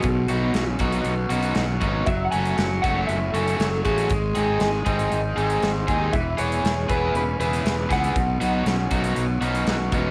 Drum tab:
HH |x-x-x-xxx-xxx-x-|x-xxx-x-x-xxx-xx|x-x-x-xxx-xxx-x-|x-xxx-x-x-xxx-xx|
SD |----o-------o---|----o-------o---|----o-------o---|----o-------o-o-|
BD |o-----o-------o-|o-----o-------o-|o-----o-------o-|o-----o-------o-|

HH |x-x-x-xxx-xxx-x-|
SD |----o-------o---|
BD |o-----o-------o-|